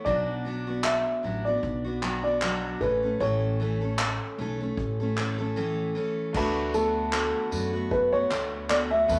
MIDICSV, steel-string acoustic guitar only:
0, 0, Header, 1, 2, 480
1, 0, Start_track
1, 0, Key_signature, 2, "major"
1, 0, Tempo, 785340
1, 38, Time_signature, 4, 2, 24, 8
1, 5618, End_track
2, 0, Start_track
2, 0, Title_t, "Steel-string acoustic guitar"
2, 0, Program_c, 0, 25
2, 34, Note_on_c, 0, 47, 78
2, 38, Note_on_c, 0, 54, 72
2, 41, Note_on_c, 0, 59, 76
2, 42, Note_on_c, 0, 62, 76
2, 46, Note_on_c, 0, 66, 81
2, 267, Note_off_c, 0, 54, 0
2, 275, Note_on_c, 0, 54, 59
2, 276, Note_off_c, 0, 47, 0
2, 276, Note_off_c, 0, 59, 0
2, 280, Note_off_c, 0, 62, 0
2, 282, Note_off_c, 0, 66, 0
2, 283, Note_on_c, 0, 59, 62
2, 289, Note_on_c, 0, 62, 67
2, 294, Note_on_c, 0, 66, 60
2, 401, Note_off_c, 0, 66, 0
2, 408, Note_off_c, 0, 54, 0
2, 409, Note_on_c, 0, 66, 55
2, 410, Note_off_c, 0, 62, 0
2, 413, Note_off_c, 0, 59, 0
2, 417, Note_on_c, 0, 62, 51
2, 425, Note_on_c, 0, 59, 42
2, 752, Note_on_c, 0, 54, 55
2, 754, Note_off_c, 0, 59, 0
2, 758, Note_off_c, 0, 66, 0
2, 759, Note_off_c, 0, 62, 0
2, 761, Note_on_c, 0, 59, 59
2, 766, Note_on_c, 0, 62, 60
2, 773, Note_on_c, 0, 66, 59
2, 882, Note_off_c, 0, 66, 0
2, 887, Note_off_c, 0, 54, 0
2, 889, Note_on_c, 0, 66, 53
2, 892, Note_off_c, 0, 59, 0
2, 892, Note_off_c, 0, 62, 0
2, 899, Note_on_c, 0, 62, 49
2, 909, Note_on_c, 0, 59, 45
2, 1120, Note_off_c, 0, 66, 0
2, 1127, Note_on_c, 0, 66, 52
2, 1130, Note_off_c, 0, 62, 0
2, 1137, Note_on_c, 0, 62, 50
2, 1138, Note_off_c, 0, 59, 0
2, 1145, Note_on_c, 0, 59, 45
2, 1234, Note_off_c, 0, 59, 0
2, 1235, Note_on_c, 0, 54, 61
2, 1237, Note_off_c, 0, 66, 0
2, 1240, Note_off_c, 0, 62, 0
2, 1242, Note_on_c, 0, 59, 66
2, 1247, Note_on_c, 0, 62, 59
2, 1252, Note_on_c, 0, 66, 71
2, 1362, Note_off_c, 0, 66, 0
2, 1368, Note_off_c, 0, 54, 0
2, 1370, Note_on_c, 0, 66, 53
2, 1372, Note_off_c, 0, 59, 0
2, 1373, Note_off_c, 0, 62, 0
2, 1380, Note_on_c, 0, 62, 50
2, 1389, Note_on_c, 0, 59, 42
2, 1478, Note_off_c, 0, 66, 0
2, 1479, Note_off_c, 0, 59, 0
2, 1480, Note_on_c, 0, 47, 70
2, 1483, Note_off_c, 0, 62, 0
2, 1483, Note_on_c, 0, 54, 78
2, 1486, Note_on_c, 0, 59, 75
2, 1491, Note_on_c, 0, 62, 82
2, 1493, Note_on_c, 0, 66, 91
2, 1716, Note_off_c, 0, 54, 0
2, 1719, Note_off_c, 0, 47, 0
2, 1719, Note_on_c, 0, 52, 59
2, 1722, Note_off_c, 0, 59, 0
2, 1724, Note_off_c, 0, 62, 0
2, 1725, Note_off_c, 0, 66, 0
2, 1726, Note_on_c, 0, 57, 61
2, 1732, Note_on_c, 0, 61, 61
2, 1737, Note_on_c, 0, 69, 57
2, 1843, Note_off_c, 0, 69, 0
2, 1850, Note_off_c, 0, 52, 0
2, 1850, Note_on_c, 0, 69, 49
2, 1852, Note_off_c, 0, 61, 0
2, 1854, Note_off_c, 0, 57, 0
2, 1860, Note_on_c, 0, 61, 45
2, 1869, Note_on_c, 0, 57, 38
2, 1958, Note_off_c, 0, 57, 0
2, 1958, Note_off_c, 0, 69, 0
2, 1959, Note_on_c, 0, 45, 70
2, 1962, Note_off_c, 0, 61, 0
2, 1963, Note_on_c, 0, 52, 74
2, 1965, Note_on_c, 0, 57, 79
2, 1969, Note_on_c, 0, 61, 74
2, 1972, Note_on_c, 0, 69, 86
2, 2191, Note_off_c, 0, 52, 0
2, 2197, Note_off_c, 0, 57, 0
2, 2198, Note_off_c, 0, 45, 0
2, 2198, Note_on_c, 0, 52, 59
2, 2203, Note_off_c, 0, 61, 0
2, 2205, Note_off_c, 0, 69, 0
2, 2205, Note_on_c, 0, 57, 61
2, 2210, Note_on_c, 0, 61, 66
2, 2216, Note_on_c, 0, 69, 73
2, 2322, Note_off_c, 0, 69, 0
2, 2329, Note_on_c, 0, 69, 57
2, 2330, Note_off_c, 0, 52, 0
2, 2332, Note_off_c, 0, 61, 0
2, 2333, Note_off_c, 0, 57, 0
2, 2339, Note_on_c, 0, 61, 49
2, 2347, Note_on_c, 0, 57, 45
2, 2677, Note_off_c, 0, 69, 0
2, 2679, Note_off_c, 0, 57, 0
2, 2681, Note_on_c, 0, 52, 68
2, 2682, Note_off_c, 0, 61, 0
2, 2687, Note_on_c, 0, 57, 63
2, 2693, Note_on_c, 0, 61, 69
2, 2698, Note_on_c, 0, 69, 74
2, 2806, Note_off_c, 0, 69, 0
2, 2811, Note_off_c, 0, 52, 0
2, 2813, Note_on_c, 0, 69, 57
2, 2814, Note_off_c, 0, 57, 0
2, 2816, Note_off_c, 0, 61, 0
2, 2823, Note_on_c, 0, 61, 59
2, 2830, Note_on_c, 0, 57, 50
2, 3048, Note_off_c, 0, 69, 0
2, 3055, Note_on_c, 0, 69, 58
2, 3056, Note_off_c, 0, 61, 0
2, 3060, Note_off_c, 0, 57, 0
2, 3065, Note_on_c, 0, 61, 58
2, 3074, Note_on_c, 0, 57, 50
2, 3159, Note_off_c, 0, 57, 0
2, 3160, Note_off_c, 0, 69, 0
2, 3161, Note_on_c, 0, 52, 63
2, 3164, Note_off_c, 0, 61, 0
2, 3166, Note_on_c, 0, 57, 72
2, 3171, Note_on_c, 0, 61, 69
2, 3178, Note_on_c, 0, 69, 78
2, 3282, Note_off_c, 0, 69, 0
2, 3290, Note_on_c, 0, 69, 67
2, 3291, Note_off_c, 0, 52, 0
2, 3294, Note_off_c, 0, 57, 0
2, 3294, Note_off_c, 0, 61, 0
2, 3301, Note_on_c, 0, 61, 53
2, 3307, Note_on_c, 0, 57, 48
2, 3398, Note_off_c, 0, 57, 0
2, 3398, Note_off_c, 0, 69, 0
2, 3399, Note_on_c, 0, 45, 85
2, 3402, Note_off_c, 0, 61, 0
2, 3403, Note_on_c, 0, 52, 80
2, 3406, Note_on_c, 0, 57, 86
2, 3409, Note_on_c, 0, 61, 94
2, 3411, Note_on_c, 0, 69, 93
2, 3629, Note_off_c, 0, 52, 0
2, 3636, Note_off_c, 0, 57, 0
2, 3636, Note_on_c, 0, 52, 66
2, 3638, Note_off_c, 0, 45, 0
2, 3643, Note_off_c, 0, 61, 0
2, 3643, Note_on_c, 0, 57, 70
2, 3644, Note_off_c, 0, 69, 0
2, 3650, Note_on_c, 0, 61, 67
2, 3654, Note_on_c, 0, 69, 76
2, 3877, Note_off_c, 0, 52, 0
2, 3878, Note_off_c, 0, 57, 0
2, 3880, Note_on_c, 0, 50, 84
2, 3884, Note_off_c, 0, 61, 0
2, 3885, Note_off_c, 0, 69, 0
2, 3886, Note_on_c, 0, 57, 87
2, 3890, Note_on_c, 0, 59, 89
2, 3894, Note_on_c, 0, 66, 94
2, 4107, Note_off_c, 0, 50, 0
2, 4114, Note_off_c, 0, 57, 0
2, 4114, Note_on_c, 0, 50, 56
2, 4120, Note_off_c, 0, 59, 0
2, 4121, Note_on_c, 0, 57, 62
2, 4125, Note_off_c, 0, 66, 0
2, 4128, Note_on_c, 0, 59, 61
2, 4133, Note_on_c, 0, 66, 62
2, 4345, Note_off_c, 0, 50, 0
2, 4351, Note_off_c, 0, 57, 0
2, 4352, Note_on_c, 0, 50, 73
2, 4354, Note_off_c, 0, 59, 0
2, 4358, Note_on_c, 0, 57, 80
2, 4359, Note_off_c, 0, 66, 0
2, 4361, Note_on_c, 0, 59, 73
2, 4366, Note_on_c, 0, 66, 76
2, 4585, Note_off_c, 0, 50, 0
2, 4593, Note_on_c, 0, 50, 62
2, 4594, Note_off_c, 0, 57, 0
2, 4598, Note_off_c, 0, 59, 0
2, 4601, Note_off_c, 0, 66, 0
2, 4601, Note_on_c, 0, 57, 56
2, 4606, Note_on_c, 0, 59, 66
2, 4613, Note_on_c, 0, 66, 61
2, 4717, Note_off_c, 0, 66, 0
2, 4724, Note_on_c, 0, 66, 55
2, 4726, Note_off_c, 0, 50, 0
2, 4728, Note_off_c, 0, 59, 0
2, 4731, Note_off_c, 0, 57, 0
2, 4735, Note_on_c, 0, 59, 51
2, 4743, Note_on_c, 0, 57, 46
2, 4958, Note_off_c, 0, 66, 0
2, 4965, Note_on_c, 0, 66, 52
2, 4967, Note_off_c, 0, 59, 0
2, 4974, Note_on_c, 0, 59, 48
2, 4975, Note_off_c, 0, 57, 0
2, 4982, Note_on_c, 0, 57, 44
2, 5072, Note_off_c, 0, 57, 0
2, 5073, Note_on_c, 0, 50, 61
2, 5074, Note_off_c, 0, 66, 0
2, 5079, Note_off_c, 0, 59, 0
2, 5080, Note_on_c, 0, 57, 66
2, 5087, Note_on_c, 0, 59, 68
2, 5094, Note_on_c, 0, 66, 66
2, 5304, Note_off_c, 0, 50, 0
2, 5309, Note_off_c, 0, 57, 0
2, 5311, Note_on_c, 0, 50, 77
2, 5314, Note_off_c, 0, 59, 0
2, 5317, Note_off_c, 0, 66, 0
2, 5317, Note_on_c, 0, 57, 79
2, 5321, Note_on_c, 0, 59, 79
2, 5325, Note_on_c, 0, 66, 88
2, 5436, Note_off_c, 0, 66, 0
2, 5443, Note_on_c, 0, 66, 60
2, 5445, Note_off_c, 0, 50, 0
2, 5447, Note_off_c, 0, 59, 0
2, 5448, Note_off_c, 0, 57, 0
2, 5454, Note_on_c, 0, 59, 48
2, 5462, Note_on_c, 0, 57, 44
2, 5551, Note_on_c, 0, 40, 75
2, 5552, Note_off_c, 0, 57, 0
2, 5553, Note_off_c, 0, 66, 0
2, 5554, Note_off_c, 0, 59, 0
2, 5554, Note_on_c, 0, 47, 71
2, 5558, Note_on_c, 0, 52, 71
2, 5560, Note_on_c, 0, 57, 82
2, 5562, Note_on_c, 0, 59, 70
2, 5564, Note_on_c, 0, 64, 78
2, 5618, Note_off_c, 0, 40, 0
2, 5618, Note_off_c, 0, 47, 0
2, 5618, Note_off_c, 0, 52, 0
2, 5618, Note_off_c, 0, 57, 0
2, 5618, Note_off_c, 0, 59, 0
2, 5618, Note_off_c, 0, 64, 0
2, 5618, End_track
0, 0, End_of_file